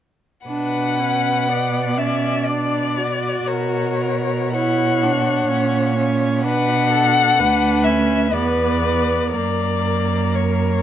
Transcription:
0.47 B2 D4 B4 F#5
0.99 C#4
1.48 B3 D5
1.97 C#4 E5
2.46 D4 D5
2.97 F#4
3.48 B2 A#4 C#5
4.02 A#4
4.53 E4 C#5 F#5
5.03 D4
5.49 A#2 C#4
5.96 C#4
6.42 B2 D4 B4 F#5
6.91 A4
7.38 D2 D4 B4
7.84 C#4 E5
8.33 E2 B3 B4 D5
9.33 F#2 A#3 A#4 D5
10.35 C#5

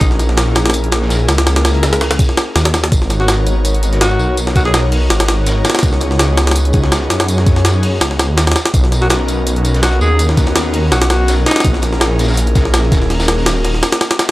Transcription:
0.01 A#1 A#3 C#4 E4 G#4 A#4, kick, closed hi-hat, tambourine
0.11 snare
0.19 snare, closed hi-hat, tambourine
0.29 snare
0.37 snare, closed hi-hat, tambourine
0.55 snare, closed hi-hat, tambourine
0.66 snare, closed hi-hat
0.70 snare, closed hi-hat, tambourine
0.74 closed hi-hat
0.84 closed hi-hat
0.92 A#3 C#4 E4 G#4 A#4, snare, closed hi-hat, tambourine
1.02 snare
1.09 snare, closed hi-hat, tambourine
1.20 closed hi-hat
1.28 C#2, snare, closed hi-hat, tambourine
1.38 snare, closed hi-hat
1.46 A#3 C#4 E4 G#4 A#4, snare, closed hi-hat, tambourine
1.56 snare, closed hi-hat
1.65 snare, closed hi-hat, tambourine
1.74 closed hi-hat
1.83 snare, closed hi-hat, tambourine
1.93 snare, closed hi-hat
2.01 snare, closed hi-hat, open hi-hat
2.11 snare, closed hi-hat
2.19 kick, closed hi-hat, tambourine
2.29 snare
2.37 snare, closed hi-hat, tambourine
2.56 D#2, snare, closed hi-hat, tambourine
2.65 snare, closed hi-hat
2.74 snare, closed hi-hat, tambourine
2.84 snare, closed hi-hat
2.92 G#1 B3 D#4 F#4 A#4 C#5, kick, closed hi-hat, tambourine
3.02 snare
3.10 snare, closed hi-hat, tambourine
3.20 F#4, snare
3.28 F#4, snare, closed hi-hat, tambourine
3.47 closed hi-hat, tambourine
3.65 closed hi-hat, tambourine
3.75 closed hi-hat
3.83 B3 D#4 F#4 A#4 C#5, closed hi-hat, tambourine
3.92 snare, closed hi-hat
4.01 F#4, snare, closed hi-hat, tambourine
4.11 closed hi-hat
4.19 B1, tambourine
4.37 B3 D#4 F#4 A#4 C#5, closed hi-hat, tambourine
4.47 snare
4.56 F#4, kick, snare, closed hi-hat, tambourine
4.65 G#4, snare, closed hi-hat
4.74 G#4, snare, closed hi-hat, tambourine
4.92 closed hi-hat, open hi-hat
5.10 G#1, snare, closed hi-hat, tambourine
5.20 snare, closed hi-hat
5.28 B3 D#4 F#4 A#4 C#5, snare, closed hi-hat, tambourine
5.46 snare, closed hi-hat, tambourine
5.64 snare, closed hi-hat, tambourine
5.70 snare, closed hi-hat
5.75 snare, closed hi-hat, tambourine
5.79 snare, closed hi-hat, tambourine
5.83 C#2 B3 D#4 F#4 G#4 C#5, kick, closed hi-hat, tambourine
5.93 snare
6.01 snare, closed hi-hat, tambourine
6.11 snare
6.19 snare, closed hi-hat, tambourine
6.37 snare, closed hi-hat, tambourine
6.47 snare, closed hi-hat
6.51 snare, closed hi-hat, tambourine
6.56 closed hi-hat
6.65 closed hi-hat
6.73 B3 D#4 F#4 G#4 C#5, kick, closed hi-hat, tambourine
6.83 snare
6.92 snare, closed hi-hat, tambourine
7.02 closed hi-hat
7.10 F#2, snare, closed hi-hat, tambourine
7.20 snare, closed hi-hat
7.28 B3 D#4 F#4 G#4 C#5, closed hi-hat, tambourine
7.38 snare
7.46 kick, snare, closed hi-hat, tambourine
7.56 snare, closed hi-hat
7.65 snare, closed hi-hat, tambourine
7.83 closed hi-hat, open hi-hat
8.01 C#2, snare, closed hi-hat, tambourine
8.11 snare
8.19 snare, closed hi-hat, tambourine
8.29 D#2
8.37 snare, closed hi-hat, tambourine
8.47 snare, closed hi-hat
8.52 snare, closed hi-hat
8.56 snare, closed hi-hat, tambourine
8.65 snare, closed hi-hat
8.74 B1 B3 C#4 D#4 F#4 A#4, kick, closed hi-hat, tambourine
8.84 snare
8.92 snare, closed hi-hat, tambourine
9.02 F#4, snare
9.10 F#4, snare, closed hi-hat, tambourine
9.28 closed hi-hat, tambourine
9.47 closed hi-hat, tambourine
9.56 closed hi-hat
9.64 B3 C#4 D#4 F#4 A#4, closed hi-hat, tambourine
9.74 snare, closed hi-hat
9.83 F#4, snare, closed hi-hat, tambourine
9.92 closed hi-hat
10.01 D#2 G#4, tambourine
10.19 B3 C#4 D#4 F#4 A#4, closed hi-hat, tambourine
10.29 snare
10.37 kick, snare, closed hi-hat, tambourine
10.46 snare, closed hi-hat
10.56 snare, closed hi-hat, tambourine
10.73 closed hi-hat, open hi-hat
10.92 B1 F#4, snare, closed hi-hat, tambourine
11.02 snare, closed hi-hat
11.10 B3 C#4 D#4 F#4 A#4, snare, closed hi-hat, tambourine
11.28 snare, closed hi-hat, tambourine
11.46 D#4, snare, closed hi-hat, tambourine
11.51 snare, closed hi-hat
11.56 snare, closed hi-hat, tambourine
11.60 snare, closed hi-hat, tambourine
11.64 A#1 A#3 C#4 E4 G#4 A#4, kick, closed hi-hat, tambourine
11.74 snare
11.82 snare, closed hi-hat, tambourine
11.93 snare
12.00 snare, closed hi-hat, tambourine
12.19 snare, closed hi-hat, tambourine
12.24 snare, tambourine
12.28 snare, tambourine
12.33 snare, tambourine
12.37 closed hi-hat, tambourine
12.47 closed hi-hat
12.55 A#3 C#4 E4 G#4 A#4, kick, snare, closed hi-hat, tambourine
12.65 snare
12.74 snare, closed hi-hat, tambourine
12.85 closed hi-hat
12.92 D#1, kick, snare, closed hi-hat, tambourine
13.02 snare
13.10 A#3 C#4 D#4 F#4 A#4, snare, closed hi-hat, open hi-hat
13.20 snare, tambourine
13.28 snare, closed hi-hat
13.38 open hi-hat
13.46 snare, closed hi-hat, tambourine
13.64 snare, closed hi-hat, open hi-hat
13.74 snare
13.83 snare, closed hi-hat, tambourine
13.92 snare, closed hi-hat
14.01 snare, closed hi-hat, tambourine
14.11 snare, closed hi-hat
14.19 snare, closed hi-hat, tambourine

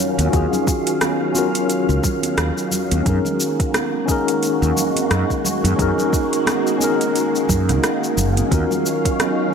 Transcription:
Already playing: D#3 F#3 C#4 F4 F#4 A#4 F5
0.18 D#2, closed hi-hat, high conga, cabasa
0.30 D#2 C#4 F4 F#4, kick, closed hi-hat, cabasa
0.36 G#4
0.53 low conga, cabasa
0.67 kick, cabasa
0.87 closed hi-hat, cabasa
1.01 cross-stick, closed hi-hat, high conga, cabasa
1.33 C#4 F4 F#4, high conga, cabasa
1.38 A#4
1.55 closed hi-hat, cabasa
1.70 closed hi-hat, cabasa
1.89 C#2, cabasa
2.04 kick, low conga, cabasa
2.23 closed hi-hat, high conga, cabasa
2.37 D#2, cross-stick, closed hi-hat, cabasa
2.58 cabasa
2.72 low conga, cabasa
2.91 D#2, closed hi-hat, high conga, cabasa
3.03 F#2 D#3 G#3 A#3 C#4 D#4 F#4 G#4, kick, closed hi-hat, cabasa
3.09 A#4
3.25 low conga, cabasa
3.40 cabasa
3.60 kick, closed hi-hat, cabasa
3.74 cross-stick, closed hi-hat, high conga, cabasa
4.06 C#4 D#4 G#4, kick, cabasa
4.12 A#4
4.28 closed hi-hat, cabasa
4.43 closed hi-hat, cabasa
4.62 D#2, cabasa
4.77 low conga, cabasa
4.96 closed hi-hat, high conga, cabasa
5.11 F#2, cross-stick, closed hi-hat, cabasa
5.30 kick, cabasa
5.45 low conga, cabasa
5.64 F#2, closed hi-hat, high conga, cabasa
5.76 F#2 C#4 D#4 G#4, kick, closed hi-hat, cabasa
5.82 A#4
5.98 low conga, cabasa
6.13 kick, cabasa
6.33 closed hi-hat, cabasa
6.47 cross-stick, closed hi-hat, high conga, cabasa
6.67 cabasa
6.78 C#4 D#4 G#4, high conga, cabasa
6.84 A#4
7.01 closed hi-hat, cabasa
7.16 closed hi-hat, cabasa
7.36 cabasa
7.49 F#2, kick, low conga, cabasa
7.69 C#2, cross-stick, closed hi-hat, high conga, cabasa
7.84 cross-stick, closed hi-hat, cabasa
8.04 cabasa
8.17 F#1, low conga, cabasa
8.37 closed hi-hat, high conga, cabasa
8.49 D#2 F#3 C#4 F4 F#4 F5, kick, closed hi-hat, cabasa
8.54 A#4
8.71 low conga, cabasa
8.86 cabasa
9.05 kick, closed hi-hat, cabasa
9.20 cross-stick, closed hi-hat, high conga, cabasa
9.50 C#4

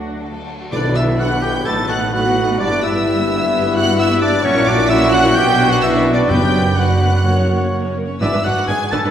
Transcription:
Already playing: D2 F#3 A3 D4 F#4 F#5
0.22 A4
0.61 F#4
0.71 B1 B2 D3 F#3 B3 D4 B4 D5 D6, tam-tam
0.84 F#3 B3
0.95 D3 D4 E4 E5 E6
1.08 F#3 B3
1.18 B2 D3 F#3 B3 D4 F#4 B4 F#5 F#6
1.31 F#3 B3
1.41 D3 D4 G4 G5 G6
1.55 F#3 B3
1.65 A1 A2 B2 F#3 A3 B3 D#4 A4 B4 A5 A6
1.78 B3 F#4
1.88 A3 D#4 F#4 F#5 F#6
2.01 B3 F#4
2.12 B2 F#3 A3 B3 D#4 F#4 B4 F#5 F#6
2.24 B3 F#4
2.36 A3 D#4
2.48 B3 F#4
2.58 G1 G2 G3 B3 D4 E4 B4 D5 D6
2.71 B3 G4
2.82 G3 E4 E5 E6
2.94 B3 G4
3.05 G3 E4
3.18 B3 G4
3.30 G3 E4
3.40 B3 G4
3.52 G3 E4
3.64 B3 G4
3.75 G3 E4 F#4 F#5 F#6
3.87 B3 G4
3.98 G3 E4 E5 E6
4.10 B3 G4
4.21 G3 D4 E4 D5 D6
4.31 B3 G4
4.43 A#1 F#2 A#2 F#3 C#4 E4 F#4 C#5 C#6
4.55 E4 A#4
4.66 C#4 D4 F#4 D5 D6
4.78 E4 A#4
4.89 F#2 F#3 C#4 E4 F#4 E5 E6
5.02 E4 A#4
5.12 C#4 F#4 F#5 F#6
5.25 E4 A#4
5.34 B1 F#2 B2 F#3 B3 D4 F#4 G4 G5 G6
5.48 D4 B4
5.59 B3 F#4
5.69 D4 F#4 B4 F#5 F#6
5.81 B3 E4 F#4 E5 E6
5.95 D4 B4
6.06 B3 F#4
6.14 D4 B4 D5 D6
6.28 F#1 F#2 F#3 B3 D4 G4 B4 G5 G6
6.41 D4 D5
6.52 B3 B4
6.64 D4 D5
6.76 F#2 F#3 B3 F#4 B4 F#5 F#6
6.81 D4
6.88 D4 D5
7.01 B3 B4
7.13 D4 D5
7.24 F#2 F#3 A#3 C#4 A#4 C#5
7.37 C#4 C#5
7.49 A#3 A#4
7.61 C#4 C#5
7.73 A#3 A#4
7.84 C#4 C#5
7.97 A#3 A#4
8.08 C#4 C#5
8.20 G#1 G#2 B2 E3 B3 D4 E4 B4 D5 E5 E6
8.33 G#2 D4 B4
8.44 G#1 G#2 D4 F#4 B4 F#5 F#6
8.57 G#2 D4 B4
8.68 G#1 G#2 D4 G#4 B4 G#5 G#6
8.91 G#1 G#2 D4 A4 B4 A5 A6
9.05 G#2 D4 B4

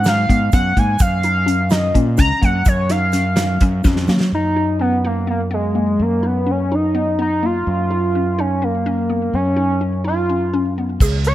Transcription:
Already playing: G#2
0.04 D#4 F5 C7, snare, closed hi-hat, shaker
0.29 G#2 B3, kick, closed hi-hat
0.52 F#2 B3 F#5 C#7, kick, closed hi-hat, shaker
0.77 G#2 A#3 G#5 D#7, kick, closed hi-hat
0.99 F#2 F5 C7, kick, closed hi-hat, shaker
1.23 D#4, closed hi-hat
1.46 C#4, closed hi-hat
1.70 D#4 D#5 A#6, snare, closed hi-hat, shaker
1.94 A#2 C#4, kick, closed hi-hat
2.17 C#2 C#4 A#5 F7, kick, snare, closed hi-hat, shaker
2.42 F#2 A#3 F#5 C#7, kick, closed hi-hat
2.65 F#2 C#5 G#6, kick, closed hi-hat, shaker
2.89 D#4 F5 C7, snare, closed hi-hat
3.12 C#4, snare, closed hi-hat, shaker
3.36 D#4, snare, closed hi-hat, shaker
3.61 F#2 C#4, kick, closed hi-hat
3.84 F2 C#4, kick, snare, shaker
3.96 snare
4.08 F#3 A#3, snare, shaker
4.20 snare
4.32 F#2 D#4 A#5
4.56 D#4
4.79 B3 C#4 F#5
5.05 A#3 D#4 F5
5.27 A#3 B3 F5
5.51 G#3 B3 D#5
5.75 A#3
6.00 F#2 A#3 F5
6.23 B3 D#4 F#5
6.46 C#4
6.51 C#4 G#5
6.72 D#4 A#5
6.95 B3
7.19 B3 D#4 A#5
7.43 A#3 F4 C6
7.67 F#2
7.91 D#4
8.15 C#4
8.39 C#4 D#4 G#5
8.62 A#3 C#4 F5
8.86 C#4
9.10 B3
9.34 F#2 C#4 G#5
9.56 D#4
9.81 C#4
10.04 D#4 F4 C6
10.29 C#4
10.54 C#4
10.78 B3
11.00 C#2 G#4, kick, crash, shaker
11.24 C#5 G#6, closed hi-hat, shaker

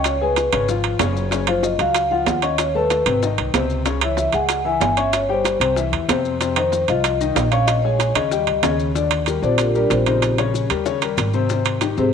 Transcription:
Already playing: C#2 C#4 C#5 C#6
0.04 C#5, high bongo, high timbale, maracas
0.21 G#3 G#4 B4 G#5, high bongo
0.36 high bongo, high timbale, low timbale, maracas
0.53 G#1 C#3 C#4 C#5, high timbale, maracas
0.69 F3 F4 F5, high bongo, maracas
0.84 high bongo, high timbale
0.99 F#1 C#3 C#4 C#5, high bongo, low bongo, high timbale, low timbale, maracas
1.16 high bongo, maracas
1.31 C#3 C#4 C#5, high bongo, high timbale, maracas
1.47 F3 F4 C5 F5, high bongo, high timbale
1.63 D#5, high bongo, low timbale, maracas
1.79 C#2 F#3 F#4 F5, high timbale, maracas
1.95 high bongo, high timbale, maracas
2.11 F3 F4 F5 F#5, high bongo
2.26 D#2 F#5, high bongo, low bongo, high timbale, low timbale, maracas
2.42 C#4 C#5 D#5 C#6, high bongo, high timbale, maracas
2.58 C#5, high bongo, high timbale, maracas
2.75 A3 A4 B4 A5, high bongo
2.90 high bongo, high timbale, low timbale, maracas
3.06 G#1 C3 C4 C5, high timbale, maracas
3.23 D#3 D#4 D#5, high bongo, maracas
3.38 C2, high bongo, high timbale
3.54 C#2 C3 C4 C5, high bongo, low bongo, high timbale, low timbale, maracas
3.70 high bongo, maracas
3.86 C#3 C#4 C#5, high bongo, high timbale, maracas
4.01 E3 E4 C#5 E5, high bongo, high timbale
4.17 E5, high bongo, low timbale, maracas
4.33 C#2 G#3 G#4 F#5 G#5, high timbale, maracas
4.49 high bongo, high timbale, maracas
4.65 E3 E4 E5 G#5, high bongo
4.80 G1 G#5, high bongo, low bongo, high timbale, low timbale, maracas
4.97 C#4 C#5 E5 C#6, high bongo, high timbale, maracas
5.13 C#5, high bongo, high timbale, maracas
5.29 G3 G4 C5 G5, high bongo
5.45 high bongo, high timbale, low timbale, maracas
5.60 C2 C3 C4 C5, high timbale, maracas
5.76 E3 E4 E5, high bongo, maracas
5.92 E2, high bongo, high timbale
6.08 F2 C3 C4 C5, high bongo, low bongo, high timbale, low timbale, maracas
6.25 high bongo, maracas
6.40 C3 C4 C5, high bongo, high timbale, maracas
6.56 D#3 D#4 C5 D#5, high bongo, high timbale
6.72 high bongo, low timbale, maracas
6.88 C2 F3 F4 D#5 F5, high timbale, maracas
7.04 high bongo, high timbale, maracas
7.20 D#3 D#4 D#5, high bongo, maracas
7.35 A#1, high bongo, low bongo, high timbale, low timbale, maracas
7.51 C#4 C#5 F5 C#6, high bongo, high timbale, maracas
7.66 D#5, high bongo, high timbale, maracas
7.82 G#3 G#4 C#5 G#5, high bongo
7.99 high bongo, high timbale, low timbale, maracas
8.15 D#2 C#3 C#4 C#5 D#5, high timbale, maracas
8.31 G3 G4 G5, high bongo, maracas
8.47 C#2, high bongo, high timbale
8.63 D#2 C#3 C#4 C#5, high bongo, low bongo, high timbale, low timbale, maracas
8.80 high bongo, maracas
8.95 D3 D4 D5, high bongo, maracas
9.11 high bongo, high timbale, maracas
9.26 G3 G4 A#4, high bongo, high timbale, maracas
9.42 A#1 D3 C4 D4 F4 G4 C5 D5, high bongo, maracas
9.58 A#3 F4 G4 A#4, high bongo, high timbale, maracas
9.74 G3 D4 G4 A#4 D5, high bongo, maracas
9.90 A#1 C4 F4 G4 C5, high bongo, low bongo, high timbale, maracas
10.06 C#3 D#4 C5, high timbale, maracas
10.22 high bongo, high timbale, maracas
10.38 C#3 C#4 C#5, high bongo, high timbale, maracas
10.54 high bongo, maracas
10.70 D#2 G3 G4 A#4, high timbale, maracas
10.86 C#3 C#4 C#5, high bongo, maracas
11.02 G3 G4 A#4, high bongo, high timbale, maracas
11.18 G#1, high bongo, low bongo, high timbale, maracas
11.33 C3 C4 C5, high bongo, maracas
11.49 C3 C4 C5, high bongo, maracas
11.65 high bongo, high timbale, maracas
11.81 D#3 D#4 G4, high bongo, high timbale, maracas
11.97 G#2 C3 C4 G4 G#4 C5, high bongo, maracas

